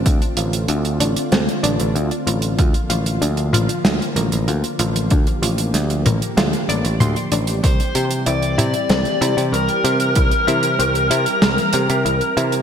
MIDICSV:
0, 0, Header, 1, 6, 480
1, 0, Start_track
1, 0, Tempo, 631579
1, 43, Time_signature, 4, 2, 24, 8
1, 9592, End_track
2, 0, Start_track
2, 0, Title_t, "Lead electric guitar"
2, 0, Program_c, 0, 29
2, 5804, Note_on_c, 0, 72, 94
2, 6106, Note_off_c, 0, 72, 0
2, 6281, Note_on_c, 0, 74, 86
2, 7146, Note_off_c, 0, 74, 0
2, 7241, Note_on_c, 0, 70, 93
2, 9546, Note_off_c, 0, 70, 0
2, 9592, End_track
3, 0, Start_track
3, 0, Title_t, "Synth arpeggio sound"
3, 0, Program_c, 1, 84
3, 283, Note_on_c, 1, 65, 74
3, 446, Note_off_c, 1, 65, 0
3, 521, Note_on_c, 1, 62, 77
3, 685, Note_off_c, 1, 62, 0
3, 762, Note_on_c, 1, 62, 95
3, 990, Note_off_c, 1, 62, 0
3, 1003, Note_on_c, 1, 60, 82
3, 1101, Note_off_c, 1, 60, 0
3, 1240, Note_on_c, 1, 62, 105
3, 1404, Note_off_c, 1, 62, 0
3, 1723, Note_on_c, 1, 65, 75
3, 1885, Note_off_c, 1, 65, 0
3, 1964, Note_on_c, 1, 65, 84
3, 2126, Note_off_c, 1, 65, 0
3, 2202, Note_on_c, 1, 65, 99
3, 2430, Note_off_c, 1, 65, 0
3, 2444, Note_on_c, 1, 62, 76
3, 2541, Note_off_c, 1, 62, 0
3, 2684, Note_on_c, 1, 65, 99
3, 2846, Note_off_c, 1, 65, 0
3, 3163, Note_on_c, 1, 70, 77
3, 3326, Note_off_c, 1, 70, 0
3, 3404, Note_on_c, 1, 65, 73
3, 3566, Note_off_c, 1, 65, 0
3, 3643, Note_on_c, 1, 65, 102
3, 3871, Note_off_c, 1, 65, 0
3, 3884, Note_on_c, 1, 62, 84
3, 3981, Note_off_c, 1, 62, 0
3, 4123, Note_on_c, 1, 65, 92
3, 4286, Note_off_c, 1, 65, 0
3, 4603, Note_on_c, 1, 70, 68
3, 4766, Note_off_c, 1, 70, 0
3, 4843, Note_on_c, 1, 65, 86
3, 5006, Note_off_c, 1, 65, 0
3, 5083, Note_on_c, 1, 74, 104
3, 5181, Note_off_c, 1, 74, 0
3, 5323, Note_on_c, 1, 84, 95
3, 5420, Note_off_c, 1, 84, 0
3, 5563, Note_on_c, 1, 62, 93
3, 5726, Note_off_c, 1, 62, 0
3, 6042, Note_on_c, 1, 67, 72
3, 6205, Note_off_c, 1, 67, 0
3, 6281, Note_on_c, 1, 64, 75
3, 6445, Note_off_c, 1, 64, 0
3, 6520, Note_on_c, 1, 64, 98
3, 6749, Note_off_c, 1, 64, 0
3, 6762, Note_on_c, 1, 60, 83
3, 6860, Note_off_c, 1, 60, 0
3, 7000, Note_on_c, 1, 64, 105
3, 7164, Note_off_c, 1, 64, 0
3, 7481, Note_on_c, 1, 67, 75
3, 7645, Note_off_c, 1, 67, 0
3, 7720, Note_on_c, 1, 64, 86
3, 7884, Note_off_c, 1, 64, 0
3, 7960, Note_on_c, 1, 64, 102
3, 8189, Note_off_c, 1, 64, 0
3, 8200, Note_on_c, 1, 60, 79
3, 8299, Note_off_c, 1, 60, 0
3, 8440, Note_on_c, 1, 64, 97
3, 8604, Note_off_c, 1, 64, 0
3, 8919, Note_on_c, 1, 67, 76
3, 9084, Note_off_c, 1, 67, 0
3, 9159, Note_on_c, 1, 64, 77
3, 9324, Note_off_c, 1, 64, 0
3, 9400, Note_on_c, 1, 64, 100
3, 9592, Note_off_c, 1, 64, 0
3, 9592, End_track
4, 0, Start_track
4, 0, Title_t, "Analog synth pad"
4, 0, Program_c, 2, 89
4, 0, Note_on_c, 2, 50, 78
4, 0, Note_on_c, 2, 57, 72
4, 0, Note_on_c, 2, 60, 71
4, 0, Note_on_c, 2, 65, 84
4, 1932, Note_off_c, 2, 60, 0
4, 1933, Note_off_c, 2, 57, 0
4, 1964, Note_on_c, 2, 58, 72
4, 1965, Note_on_c, 2, 53, 73
4, 3852, Note_off_c, 2, 65, 0
4, 3883, Note_on_c, 2, 67, 86
4, 5772, Note_off_c, 2, 50, 0
4, 5773, Note_off_c, 2, 58, 0
4, 5774, Note_off_c, 2, 53, 0
4, 5804, Note_on_c, 2, 52, 79
4, 5804, Note_on_c, 2, 55, 72
4, 5805, Note_on_c, 2, 60, 76
4, 9592, Note_off_c, 2, 52, 0
4, 9592, Note_off_c, 2, 55, 0
4, 9592, Note_off_c, 2, 60, 0
4, 9592, Note_off_c, 2, 67, 0
4, 9592, End_track
5, 0, Start_track
5, 0, Title_t, "Picked electric bass"
5, 0, Program_c, 3, 34
5, 44, Note_on_c, 3, 38, 95
5, 153, Note_off_c, 3, 38, 0
5, 282, Note_on_c, 3, 33, 79
5, 502, Note_off_c, 3, 33, 0
5, 522, Note_on_c, 3, 38, 91
5, 741, Note_off_c, 3, 38, 0
5, 762, Note_on_c, 3, 33, 96
5, 872, Note_off_c, 3, 33, 0
5, 1005, Note_on_c, 3, 38, 86
5, 1114, Note_off_c, 3, 38, 0
5, 1244, Note_on_c, 3, 33, 90
5, 1353, Note_off_c, 3, 33, 0
5, 1366, Note_on_c, 3, 33, 83
5, 1474, Note_off_c, 3, 33, 0
5, 1485, Note_on_c, 3, 38, 94
5, 1593, Note_off_c, 3, 38, 0
5, 1725, Note_on_c, 3, 33, 106
5, 1943, Note_off_c, 3, 33, 0
5, 1965, Note_on_c, 3, 38, 101
5, 2073, Note_off_c, 3, 38, 0
5, 2204, Note_on_c, 3, 33, 81
5, 2422, Note_off_c, 3, 33, 0
5, 2444, Note_on_c, 3, 38, 92
5, 2663, Note_off_c, 3, 38, 0
5, 2682, Note_on_c, 3, 33, 101
5, 2792, Note_off_c, 3, 33, 0
5, 2922, Note_on_c, 3, 38, 85
5, 3032, Note_off_c, 3, 38, 0
5, 3162, Note_on_c, 3, 33, 91
5, 3272, Note_off_c, 3, 33, 0
5, 3284, Note_on_c, 3, 33, 86
5, 3393, Note_off_c, 3, 33, 0
5, 3403, Note_on_c, 3, 38, 98
5, 3512, Note_off_c, 3, 38, 0
5, 3644, Note_on_c, 3, 33, 102
5, 3862, Note_off_c, 3, 33, 0
5, 3884, Note_on_c, 3, 38, 97
5, 3993, Note_off_c, 3, 38, 0
5, 4122, Note_on_c, 3, 33, 80
5, 4341, Note_off_c, 3, 33, 0
5, 4361, Note_on_c, 3, 38, 91
5, 4581, Note_off_c, 3, 38, 0
5, 4602, Note_on_c, 3, 33, 95
5, 4712, Note_off_c, 3, 33, 0
5, 4842, Note_on_c, 3, 38, 81
5, 4952, Note_off_c, 3, 38, 0
5, 5082, Note_on_c, 3, 33, 85
5, 5192, Note_off_c, 3, 33, 0
5, 5202, Note_on_c, 3, 33, 85
5, 5312, Note_off_c, 3, 33, 0
5, 5323, Note_on_c, 3, 38, 92
5, 5432, Note_off_c, 3, 38, 0
5, 5563, Note_on_c, 3, 33, 100
5, 5782, Note_off_c, 3, 33, 0
5, 5804, Note_on_c, 3, 36, 97
5, 5913, Note_off_c, 3, 36, 0
5, 6044, Note_on_c, 3, 48, 84
5, 6262, Note_off_c, 3, 48, 0
5, 6283, Note_on_c, 3, 36, 94
5, 6502, Note_off_c, 3, 36, 0
5, 6523, Note_on_c, 3, 48, 96
5, 6633, Note_off_c, 3, 48, 0
5, 6762, Note_on_c, 3, 36, 89
5, 6872, Note_off_c, 3, 36, 0
5, 7002, Note_on_c, 3, 48, 94
5, 7112, Note_off_c, 3, 48, 0
5, 7122, Note_on_c, 3, 48, 87
5, 7232, Note_off_c, 3, 48, 0
5, 7241, Note_on_c, 3, 36, 100
5, 7351, Note_off_c, 3, 36, 0
5, 7481, Note_on_c, 3, 48, 104
5, 7701, Note_off_c, 3, 48, 0
5, 7723, Note_on_c, 3, 36, 101
5, 7832, Note_off_c, 3, 36, 0
5, 7963, Note_on_c, 3, 48, 78
5, 8182, Note_off_c, 3, 48, 0
5, 8202, Note_on_c, 3, 36, 92
5, 8422, Note_off_c, 3, 36, 0
5, 8442, Note_on_c, 3, 48, 96
5, 8552, Note_off_c, 3, 48, 0
5, 8681, Note_on_c, 3, 36, 89
5, 8791, Note_off_c, 3, 36, 0
5, 8920, Note_on_c, 3, 48, 91
5, 9031, Note_off_c, 3, 48, 0
5, 9042, Note_on_c, 3, 48, 89
5, 9152, Note_off_c, 3, 48, 0
5, 9162, Note_on_c, 3, 36, 97
5, 9272, Note_off_c, 3, 36, 0
5, 9401, Note_on_c, 3, 48, 106
5, 9592, Note_off_c, 3, 48, 0
5, 9592, End_track
6, 0, Start_track
6, 0, Title_t, "Drums"
6, 44, Note_on_c, 9, 36, 118
6, 44, Note_on_c, 9, 42, 67
6, 120, Note_off_c, 9, 36, 0
6, 120, Note_off_c, 9, 42, 0
6, 166, Note_on_c, 9, 42, 41
6, 242, Note_off_c, 9, 42, 0
6, 280, Note_on_c, 9, 42, 89
6, 356, Note_off_c, 9, 42, 0
6, 404, Note_on_c, 9, 42, 68
6, 480, Note_off_c, 9, 42, 0
6, 520, Note_on_c, 9, 42, 74
6, 596, Note_off_c, 9, 42, 0
6, 645, Note_on_c, 9, 42, 49
6, 721, Note_off_c, 9, 42, 0
6, 763, Note_on_c, 9, 42, 104
6, 839, Note_off_c, 9, 42, 0
6, 885, Note_on_c, 9, 42, 66
6, 961, Note_off_c, 9, 42, 0
6, 1003, Note_on_c, 9, 42, 60
6, 1007, Note_on_c, 9, 38, 110
6, 1079, Note_off_c, 9, 42, 0
6, 1083, Note_off_c, 9, 38, 0
6, 1130, Note_on_c, 9, 42, 43
6, 1206, Note_off_c, 9, 42, 0
6, 1245, Note_on_c, 9, 42, 98
6, 1321, Note_off_c, 9, 42, 0
6, 1365, Note_on_c, 9, 42, 63
6, 1441, Note_off_c, 9, 42, 0
6, 1487, Note_on_c, 9, 42, 58
6, 1563, Note_off_c, 9, 42, 0
6, 1605, Note_on_c, 9, 42, 45
6, 1681, Note_off_c, 9, 42, 0
6, 1727, Note_on_c, 9, 42, 100
6, 1803, Note_off_c, 9, 42, 0
6, 1840, Note_on_c, 9, 42, 68
6, 1916, Note_off_c, 9, 42, 0
6, 1965, Note_on_c, 9, 36, 122
6, 1966, Note_on_c, 9, 42, 70
6, 2041, Note_off_c, 9, 36, 0
6, 2042, Note_off_c, 9, 42, 0
6, 2084, Note_on_c, 9, 42, 40
6, 2160, Note_off_c, 9, 42, 0
6, 2204, Note_on_c, 9, 42, 102
6, 2280, Note_off_c, 9, 42, 0
6, 2327, Note_on_c, 9, 42, 64
6, 2403, Note_off_c, 9, 42, 0
6, 2447, Note_on_c, 9, 42, 66
6, 2523, Note_off_c, 9, 42, 0
6, 2563, Note_on_c, 9, 42, 47
6, 2639, Note_off_c, 9, 42, 0
6, 2684, Note_on_c, 9, 45, 51
6, 2691, Note_on_c, 9, 42, 102
6, 2760, Note_off_c, 9, 45, 0
6, 2767, Note_off_c, 9, 42, 0
6, 2806, Note_on_c, 9, 42, 58
6, 2882, Note_off_c, 9, 42, 0
6, 2924, Note_on_c, 9, 38, 127
6, 2925, Note_on_c, 9, 42, 64
6, 3000, Note_off_c, 9, 38, 0
6, 3001, Note_off_c, 9, 42, 0
6, 3056, Note_on_c, 9, 42, 41
6, 3132, Note_off_c, 9, 42, 0
6, 3164, Note_on_c, 9, 42, 91
6, 3240, Note_off_c, 9, 42, 0
6, 3285, Note_on_c, 9, 42, 69
6, 3361, Note_off_c, 9, 42, 0
6, 3404, Note_on_c, 9, 42, 70
6, 3480, Note_off_c, 9, 42, 0
6, 3525, Note_on_c, 9, 42, 48
6, 3601, Note_off_c, 9, 42, 0
6, 3642, Note_on_c, 9, 42, 104
6, 3718, Note_off_c, 9, 42, 0
6, 3768, Note_on_c, 9, 42, 62
6, 3844, Note_off_c, 9, 42, 0
6, 3879, Note_on_c, 9, 42, 68
6, 3884, Note_on_c, 9, 36, 123
6, 3955, Note_off_c, 9, 42, 0
6, 3960, Note_off_c, 9, 36, 0
6, 4004, Note_on_c, 9, 42, 43
6, 4080, Note_off_c, 9, 42, 0
6, 4125, Note_on_c, 9, 42, 96
6, 4201, Note_off_c, 9, 42, 0
6, 4241, Note_on_c, 9, 42, 70
6, 4317, Note_off_c, 9, 42, 0
6, 4363, Note_on_c, 9, 42, 64
6, 4364, Note_on_c, 9, 38, 36
6, 4439, Note_off_c, 9, 42, 0
6, 4440, Note_off_c, 9, 38, 0
6, 4485, Note_on_c, 9, 42, 45
6, 4561, Note_off_c, 9, 42, 0
6, 4603, Note_on_c, 9, 42, 95
6, 4608, Note_on_c, 9, 45, 87
6, 4679, Note_off_c, 9, 42, 0
6, 4684, Note_off_c, 9, 45, 0
6, 4728, Note_on_c, 9, 42, 62
6, 4804, Note_off_c, 9, 42, 0
6, 4845, Note_on_c, 9, 42, 67
6, 4846, Note_on_c, 9, 38, 127
6, 4921, Note_off_c, 9, 42, 0
6, 4922, Note_off_c, 9, 38, 0
6, 4964, Note_on_c, 9, 42, 46
6, 5040, Note_off_c, 9, 42, 0
6, 5088, Note_on_c, 9, 42, 94
6, 5164, Note_off_c, 9, 42, 0
6, 5204, Note_on_c, 9, 42, 63
6, 5280, Note_off_c, 9, 42, 0
6, 5322, Note_on_c, 9, 45, 82
6, 5326, Note_on_c, 9, 42, 57
6, 5398, Note_off_c, 9, 45, 0
6, 5402, Note_off_c, 9, 42, 0
6, 5444, Note_on_c, 9, 42, 50
6, 5520, Note_off_c, 9, 42, 0
6, 5561, Note_on_c, 9, 42, 96
6, 5637, Note_off_c, 9, 42, 0
6, 5679, Note_on_c, 9, 42, 66
6, 5755, Note_off_c, 9, 42, 0
6, 5804, Note_on_c, 9, 36, 114
6, 5804, Note_on_c, 9, 42, 70
6, 5880, Note_off_c, 9, 36, 0
6, 5880, Note_off_c, 9, 42, 0
6, 5927, Note_on_c, 9, 42, 42
6, 6003, Note_off_c, 9, 42, 0
6, 6042, Note_on_c, 9, 42, 83
6, 6118, Note_off_c, 9, 42, 0
6, 6161, Note_on_c, 9, 42, 61
6, 6237, Note_off_c, 9, 42, 0
6, 6280, Note_on_c, 9, 42, 69
6, 6356, Note_off_c, 9, 42, 0
6, 6403, Note_on_c, 9, 42, 40
6, 6479, Note_off_c, 9, 42, 0
6, 6525, Note_on_c, 9, 45, 58
6, 6526, Note_on_c, 9, 42, 98
6, 6601, Note_off_c, 9, 45, 0
6, 6602, Note_off_c, 9, 42, 0
6, 6640, Note_on_c, 9, 42, 56
6, 6716, Note_off_c, 9, 42, 0
6, 6760, Note_on_c, 9, 42, 63
6, 6766, Note_on_c, 9, 38, 106
6, 6836, Note_off_c, 9, 42, 0
6, 6842, Note_off_c, 9, 38, 0
6, 6880, Note_on_c, 9, 42, 45
6, 6956, Note_off_c, 9, 42, 0
6, 7005, Note_on_c, 9, 42, 104
6, 7081, Note_off_c, 9, 42, 0
6, 7127, Note_on_c, 9, 42, 64
6, 7203, Note_off_c, 9, 42, 0
6, 7249, Note_on_c, 9, 42, 65
6, 7325, Note_off_c, 9, 42, 0
6, 7360, Note_on_c, 9, 42, 43
6, 7436, Note_off_c, 9, 42, 0
6, 7483, Note_on_c, 9, 42, 94
6, 7559, Note_off_c, 9, 42, 0
6, 7599, Note_on_c, 9, 42, 61
6, 7675, Note_off_c, 9, 42, 0
6, 7717, Note_on_c, 9, 42, 66
6, 7723, Note_on_c, 9, 36, 112
6, 7793, Note_off_c, 9, 42, 0
6, 7799, Note_off_c, 9, 36, 0
6, 7839, Note_on_c, 9, 42, 43
6, 7915, Note_off_c, 9, 42, 0
6, 7965, Note_on_c, 9, 42, 80
6, 8041, Note_off_c, 9, 42, 0
6, 8078, Note_on_c, 9, 42, 64
6, 8154, Note_off_c, 9, 42, 0
6, 8205, Note_on_c, 9, 42, 68
6, 8281, Note_off_c, 9, 42, 0
6, 8324, Note_on_c, 9, 42, 44
6, 8400, Note_off_c, 9, 42, 0
6, 8443, Note_on_c, 9, 42, 96
6, 8519, Note_off_c, 9, 42, 0
6, 8559, Note_on_c, 9, 42, 58
6, 8635, Note_off_c, 9, 42, 0
6, 8679, Note_on_c, 9, 38, 127
6, 8680, Note_on_c, 9, 42, 59
6, 8755, Note_off_c, 9, 38, 0
6, 8756, Note_off_c, 9, 42, 0
6, 8801, Note_on_c, 9, 42, 44
6, 8877, Note_off_c, 9, 42, 0
6, 8912, Note_on_c, 9, 42, 100
6, 8988, Note_off_c, 9, 42, 0
6, 9041, Note_on_c, 9, 42, 67
6, 9117, Note_off_c, 9, 42, 0
6, 9164, Note_on_c, 9, 42, 59
6, 9240, Note_off_c, 9, 42, 0
6, 9279, Note_on_c, 9, 42, 46
6, 9355, Note_off_c, 9, 42, 0
6, 9404, Note_on_c, 9, 42, 91
6, 9480, Note_off_c, 9, 42, 0
6, 9518, Note_on_c, 9, 42, 60
6, 9592, Note_off_c, 9, 42, 0
6, 9592, End_track
0, 0, End_of_file